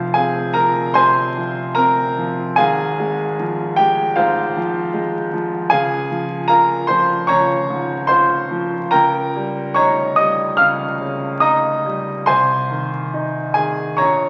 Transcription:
0.00 0.92 F1 medium
0.00 0.92 F2 medium
0.00 0.40 F3 medium
0.00 0.11 F4 medium
0.00 0.11 C5 medium
0.00 0.14 F5 medium
0.14 0.80 C4 soft
0.14 0.53 G#4 medium
0.14 0.53 F5 medium
0.14 0.55 G#5 medium
0.54 1.21 F3 medium
0.54 0.93 A#4 medium
0.54 0.95 A#5 medium
0.94 1.61 C3 soft
0.94 1.72 C5 medium
0.94 1.73 G#5 medium
0.94 1.76 C6 loud
1.37 2.01 F3 soft
1.75 2.42 C4 medium
1.75 2.54 A#4 medium
1.75 2.58 A#5 loud
2.18 2.59 F3 medium
2.56 4.13 G#1 medium
2.56 4.14 G#2 medium
2.56 3.74 G#4 medium
2.56 3.74 F5 medium
2.56 3.77 G#5 loud
2.99 3.63 G#3 medium
3.39 4.02 F3 medium
3.76 4.41 G#3 medium
3.76 4.14 G4 medium
3.76 4.17 G5 loud
4.16 5.69 G#2 medium
4.16 5.29 F4 medium
4.16 5.29 C5 medium
4.16 5.32 F5 medium
4.57 5.18 F3 medium
4.94 5.56 G#3 medium
5.33 5.72 F3 medium
5.70 7.26 C#2 medium
5.70 6.46 G#4 medium
5.70 6.46 F5 medium
5.70 6.50 G#5 loud
6.11 6.75 F3 medium
6.48 7.14 F4 medium
6.48 6.87 A#4 medium
6.48 6.87 F5 medium
6.48 6.89 A#5 loud
6.87 7.54 F3 medium
6.87 7.26 C5 medium
6.87 7.29 C6 loud
7.27 8.89 C#2 medium
7.27 8.05 C#5 medium
7.27 8.05 A#5 medium
7.27 8.08 C#6 loud
7.70 8.34 G#2 soft
8.07 8.76 F4 medium
8.07 8.88 C5 medium
8.07 8.92 C6 loud
8.51 8.93 F3 medium
8.91 10.57 C#2 medium
8.91 9.73 A#4 medium
8.91 9.73 G5 medium
8.91 9.74 A#5 loud
9.36 10.03 G3 medium
9.74 10.44 D#4 medium
9.74 10.15 C#5 medium
9.74 10.15 A#5 medium
9.74 10.18 C#6 loud
10.16 10.85 G3 medium
10.16 10.56 D#5 medium
10.16 10.59 D#6 loud
10.57 12.25 C#2 medium
10.57 11.39 F5 medium
10.57 11.42 F6 loud
11.01 11.69 C#3 soft
11.40 12.11 D#4 medium
11.40 12.24 D#5 medium
11.40 12.24 A#5 medium
11.40 12.27 D#6 loud
11.86 12.29 G3 soft
12.26 13.97 C2 medium
12.26 13.53 C5 medium
12.26 13.53 G#5 medium
12.26 13.56 C6 loud
12.71 13.40 D#3 medium
13.14 13.83 D#4 soft
13.54 14.00 D#3 soft
13.54 13.96 G#4 medium
13.54 13.99 G#5 medium
13.97 14.29 A#1 medium
13.97 14.29 C#5 medium
13.97 14.29 A#5 medium
13.97 14.29 C#6 medium

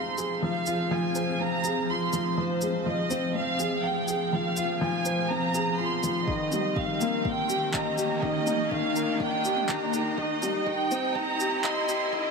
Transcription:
0.00 0.42 F3 medium
0.00 6.27 F3 medium
0.00 2.62 G#3 medium
0.00 1.40 C4 medium
0.00 7.84 C4 medium
0.00 0.18 G#4 medium
0.00 3.54 G#4 medium
0.00 0.17 F5 medium
0.00 7.41 F5 medium
0.00 0.42 C6 medium
0.00 riser medium
0.18 0.41 G#4 medium
0.18 shaker medium
0.42 0.66 F3 medium
0.42 0.88 F5 medium
0.66 0.90 F4 medium
0.66 shaker medium
0.91 1.14 F3 medium
0.91 1.40 G#5 medium
1.15 1.39 C5 medium
1.15 shaker medium
1.40 1.63 C4 medium
1.40 1.89 A#5 loud
1.64 1.88 G#4 medium
1.64 shaker medium
1.88 2.12 F4 medium
1.88 2.37 C6 medium
2.13 2.36 F3 medium
2.13 shaker medium
2.37 2.61 F3 medium
2.37 2.86 C5 medium
2.61 2.76 G#3 medium
2.61 shaker medium
2.86 3.00 F3 medium
2.86 3.35 D#5 medium
3.10 3.33 C4 loud
3.10 shaker medium
3.35 3.58 C4 medium
3.35 3.80 F5 loud
3.59 3.83 G#4 medium
3.59 shaker medium
3.83 4.07 F5 medium
3.83 4.32 G5 medium
4.08 4.31 G#4 medium
4.08 shaker medium
4.32 4.56 F3 medium
4.32 4.81 F5 medium
4.57 4.80 F4 medium
4.57 shaker medium
4.81 5.04 F3 medium
4.81 5.27 G#5 medium
5.05 5.29 C5 medium
5.05 shaker medium
5.30 5.53 C4 medium
5.30 5.79 A#5 loud
5.54 5.78 G#4 medium
5.54 shaker medium
5.79 6.02 F4 medium
5.79 6.28 C6 medium
6.03 6.27 F3 medium
6.03 shaker medium
6.27 10.18 D#3 medium
6.27 6.51 D#3 medium
6.27 6.77 D#5 medium
6.27 kick medium
6.46 11.29 A#3 medium
6.52 6.66 G3 medium
6.52 mid tom medium
6.52 shaker medium
6.76 6.91 D#3 medium
6.76 7.25 F5 medium
6.76 kick loud
7.01 7.24 A#3 medium
7.01 shaker medium
7.25 7.48 A#3 medium
7.25 7.74 G5 loud
7.25 kick loud
7.49 7.73 G4 medium
7.49 shaker medium
7.74 7.97 D#5 medium
7.74 8.23 A#5 medium
7.74 kick loud
7.74 clap medium
7.94 12.31 D#5 medium
7.98 8.21 G4 medium
7.98 shaker medium
8.22 8.46 D#3 medium
8.22 8.72 D#5 medium
8.22 kick medium
8.47 8.70 D#4 medium
8.47 mid tom medium
8.47 shaker medium
8.71 8.95 D#3 loud
8.71 9.20 F5 loud
8.71 kick loud
8.96 9.19 A#4 medium
8.96 shaker medium
9.20 9.43 A#3 medium
9.20 9.66 G5 loud
9.20 kick loud
9.45 9.68 G4 medium
9.45 shaker medium
9.57 mid tom medium
9.69 9.92 D#4 medium
9.69 10.18 A#5 medium
9.69 kick loud
9.69 clap medium
9.93 10.17 D#3 medium
9.93 shaker medium
10.18 12.31 C3 medium
10.18 10.41 D#3 medium
10.18 10.67 D#5 medium
10.18 kick medium
10.42 10.56 G3 medium
10.42 mid tom medium
10.42 shaker medium
10.66 10.81 D#3 medium
10.66 11.15 G5 loud
10.66 kick loud
10.84 12.31 C4 medium
10.91 11.14 C4 loud
10.91 shaker medium
11.15 11.39 C4 medium
11.15 11.64 A#5 loud
11.15 kick loud
11.40 11.63 G4 medium
11.40 shaker medium
11.64 11.88 D#5 loud
11.64 12.13 C6 medium
11.64 kick loud
11.64 clap medium
11.89 12.12 G4 medium
11.89 shaker medium
12.13 12.31 D#3 medium
12.13 12.31 D#5 medium
12.13 kick loud

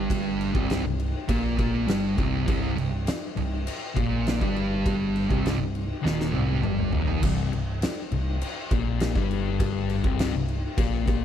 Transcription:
0.00 0.51 G1 loud
0.00 0.53 G2 medium
0.00 0.54 G3 medium
0.10 kick loud
0.10 crash medium
0.41 crash medium
0.54 0.82 C1 medium
0.54 0.83 C2 medium
0.54 0.83 C3 medium
0.54 kick loud
0.70 snare loud
0.70 crash medium
0.84 1.12 C1 medium
0.84 1.08 C2 medium
1.00 crash medium
1.28 1.56 A#1 medium
1.28 1.57 A#2 loud
1.28 1.57 A#3 loud
1.28 kick loud
1.28 crash medium
1.58 1.86 A#1 medium
1.58 1.87 A#2 loud
1.58 1.87 A#3 loud
1.58 kick loud
1.58 crash medium
1.87 2.15 G1 loud
1.87 2.16 G2 loud
1.87 2.17 G3 loud
1.87 snare loud
1.87 crash medium
2.16 2.45 C1 medium
2.16 2.44 C2 medium
2.16 2.45 C3 loud
2.16 kick loud
2.16 crash medium
2.46 2.75 C1 loud
2.46 2.75 C2 loud
2.46 2.76 C3 loud
2.46 kick loud
2.46 crash medium
2.76 3.05 C1 medium
2.76 3.00 C2 medium
2.76 crash medium
3.07 snare loud
3.07 crash loud
3.36 3.65 C1 loud
3.36 3.60 C2 medium
3.36 crash medium
3.67 crash medium
3.95 4.38 A#1 loud
3.95 4.39 A#2 medium
3.95 4.40 A#3 loud
3.95 kick loud
3.95 crash medium
4.27 snare loud
4.27 crash medium
4.40 5.26 G1 medium
4.40 5.28 G2 medium
4.40 5.29 G3 medium
4.40 kick loud
4.56 crash soft
4.86 kick loud
4.86 crash medium
5.16 crash medium
5.29 5.58 C1 medium
5.29 5.57 C2 medium
5.29 5.58 C3 medium
5.29 kick loud
5.46 snare loud
5.46 crash medium
5.58 5.88 C1 medium
5.58 5.82 C2 medium
5.75 crash medium
6.02 6.32 D#1 medium
6.02 6.32 D#2 loud
6.02 6.32 D#3 loud
6.06 snare medium
6.21 snare medium
6.33 6.62 C1 loud
6.33 6.62 C2 medium
6.33 6.62 C3 loud
6.33 high tom medium
6.49 high tom medium
6.63 6.91 G1 loud
6.63 6.92 G2 loud
6.63 6.92 G3 loud
6.63 mid tom medium
6.78 mid tom medium
6.92 7.21 D#1 medium
6.92 7.21 D#2 medium
6.92 7.22 D#3 loud
6.92 floor tom loud
7.08 floor tom medium
7.22 7.50 C1 loud
7.22 7.51 C2 loud
7.22 7.51 C3 loud
7.22 kick loud
7.22 crash loud
7.52 7.81 C1 medium
7.52 7.76 C2 medium
7.52 crash medium
7.82 snare loud
7.82 crash loud
8.12 8.39 C1 medium
8.12 8.36 C2 medium
8.12 crash medium
8.41 crash medium
8.71 9.12 A#1 loud
8.71 9.15 A#2 loud
8.71 9.15 A#3 loud
8.71 kick loud
8.71 crash medium
9.00 snare loud
9.00 crash medium
9.15 10.00 G1 medium
9.15 10.03 G2 medium
9.15 10.04 G3 loud
9.15 kick loud
9.31 crash medium
9.60 kick loud
9.60 crash medium
9.89 crash medium
10.04 10.32 C1 loud
10.04 10.32 C2 medium
10.04 10.34 C3 loud
10.04 kick loud
10.19 snare loud
10.19 crash medium
10.33 10.62 C1 medium
10.33 10.57 C2 medium
10.48 crash medium
10.77 11.06 A#1 medium
10.77 11.05 A#2 loud
10.77 11.05 A#3 loud
10.77 kick loud
10.77 crash medium
11.06 11.25 A#1 medium
11.06 11.25 A#2 loud
11.06 11.25 A#3 loud
11.06 kick loud
11.06 crash medium

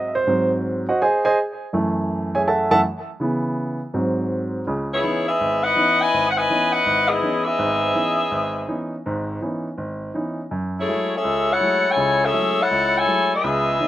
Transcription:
0.00 0.23 G#2 medium
0.00 0.24 F#3 soft
0.00 0.24 C4 medium
0.00 0.15 D#5 medium
0.15 0.49 C5 medium
0.27 0.85 G#2 medium
0.27 0.85 F#3 soft
0.27 0.86 C4 medium
0.89 1.01 F#4 medium
0.89 1.01 C5 medium
0.89 1.01 D#5 medium
0.89 1.01 F#5 medium
1.02 1.24 G#4 medium
1.02 1.24 C5 medium
1.02 1.24 D#5 medium
1.02 1.23 G#5 medium
1.25 1.37 G#4 medium
1.25 1.37 C5 medium
1.25 1.37 D#5 medium
1.25 1.37 G#5 medium
1.73 2.69 F#2 medium
1.73 2.69 E3 medium
1.73 2.70 A3 medium
2.35 2.47 G#4 medium
2.35 2.47 C#5 medium
2.35 2.46 E5 medium
2.35 2.41 G#5 medium
2.43 2.46 G#5 medium
2.48 2.70 A4 medium
2.48 2.70 E5 medium
2.48 2.70 F#5 medium
2.48 2.70 A5 medium
2.71 2.82 F#2 medium
2.71 2.82 E3 soft
2.71 2.83 A3 medium
2.71 2.79 A4 medium
2.71 2.79 E5 medium
2.71 2.79 F#5 medium
2.71 2.79 A5 loud
3.20 3.78 C#3 medium
3.20 3.78 E3 soft
3.20 3.79 B3 medium
3.94 4.63 G#2 medium
3.94 4.64 F#3 soft
3.94 4.64 C4 medium
4.67 4.99 C#2 medium
4.67 4.99 C#3 medium
4.92 5.26 B3 medium
4.92 5.26 E4 medium
4.92 5.26 G#4 medium
4.92 5.26 C#5 loud
5.03 5.29 E3 medium
5.03 5.29 B3 medium
5.03 5.29 C#4 soft
5.03 5.29 D#4 medium
5.27 5.61 B3 medium
5.27 5.62 G#4 medium
5.27 5.62 D#5 medium
5.27 5.61 E5 loud
5.41 5.72 G#1 medium
5.63 5.99 E4 loud
5.63 5.99 B4 loud
5.63 5.98 D#5 loud
5.63 6.00 F#5 loud
5.76 6.02 E3 medium
5.76 6.02 B3 soft
5.76 6.02 C#4 soft
5.76 6.02 D#4 medium
6.00 6.28 E4 loud
6.00 6.28 B4 medium
6.00 6.27 D#5 loud
6.00 6.28 G#5 loud
6.14 6.45 G#1 medium
6.29 6.38 F#5 medium
6.36 6.70 E4 medium
6.36 6.70 B4 loud
6.36 6.71 D#5 loud
6.36 6.73 G#5 loud
6.50 6.75 E3 medium
6.50 6.76 B3 soft
6.50 6.75 C#4 medium
6.50 6.76 D#4 medium
6.71 7.07 E4 loud
6.71 7.09 B4 medium
6.71 7.07 D#5 loud
6.71 7.09 F#5 loud
6.86 7.18 G#1 medium
7.08 7.44 B3 medium
7.08 7.46 E4 medium
7.08 7.44 G#4 medium
7.08 7.43 D#5 loud
7.22 7.48 E3 medium
7.22 7.48 B3 soft
7.22 7.48 C#4 soft
7.22 7.48 D#4 medium
7.44 8.92 B3 medium
7.44 8.92 G#4 loud
7.44 8.91 D#5 medium
7.44 8.91 E5 loud
7.59 7.91 G#1 medium
7.59 7.91 G#2 medium
7.95 8.20 E3 medium
7.95 8.21 B3 soft
7.95 8.21 C#4 soft
7.95 8.21 D#4 medium
8.31 8.63 G#1 medium
8.68 8.94 E3 soft
8.68 8.94 B3 soft
8.68 8.94 C#4 soft
8.68 8.94 D#4 medium
9.06 9.37 G#1 medium
9.06 9.37 G#2 medium
9.41 9.67 E3 medium
9.41 9.67 B3 soft
9.41 9.67 C#4 medium
9.41 9.67 D#4 medium
9.78 10.09 G#1 medium
10.14 10.40 E3 medium
10.14 10.40 B3 soft
10.14 10.40 C#4 soft
10.14 10.40 D#4 medium
10.51 10.83 F#2 medium
10.79 11.12 A3 medium
10.79 11.11 E4 medium
10.79 11.12 G#4 medium
10.79 11.12 C#5 medium
10.88 11.13 F#3 medium
10.88 11.13 G#3 medium
10.88 11.13 A3 medium
10.88 11.13 E4 medium
11.15 11.50 C#4 medium
11.15 11.50 G#4 medium
11.15 11.50 A4 medium
11.15 11.50 E5 loud
11.25 11.56 C#2 medium
11.51 11.86 E4 loud
11.51 11.86 A4 loud
11.51 11.86 C#5 loud
11.51 11.87 F#5 loud
11.60 11.86 F#3 medium
11.60 11.86 G#3 medium
11.60 11.86 A3 medium
11.60 11.86 E4 medium
11.89 12.23 E4 loud
11.89 12.23 A4 medium
11.89 12.23 C#5 loud
11.89 12.24 G#5 loud
11.96 12.29 C#2 medium
11.96 12.28 C#3 medium
12.24 12.59 C#4 medium
12.24 12.59 G#4 medium
12.24 12.59 A4 medium
12.24 12.59 E5 loud
12.33 12.59 F#3 medium
12.33 12.59 G#3 medium
12.33 12.59 A3 soft
12.33 12.59 E4 medium
12.60 12.95 E4 loud
12.60 12.96 A4 medium
12.60 12.96 C#5 medium
12.60 12.96 F#5 loud
12.71 13.02 C#2 medium
12.98 13.33 E4 loud
12.98 13.32 A4 loud
12.98 13.33 C#5 medium
12.98 13.33 G#5 loud
13.07 13.32 F#3 soft
13.07 13.32 G#3 soft
13.07 13.32 A3 soft
13.07 13.32 E4 medium
13.34 13.88 B3 medium
13.34 13.88 G#4 medium
13.34 13.88 D#5 medium
13.34 13.88 E5 loud
13.44 13.75 C#2 medium
13.44 13.75 C#3 medium
13.80 13.88 E3 medium
13.80 13.88 B3 soft
13.80 13.88 C#4 medium
13.80 13.88 D#4 medium

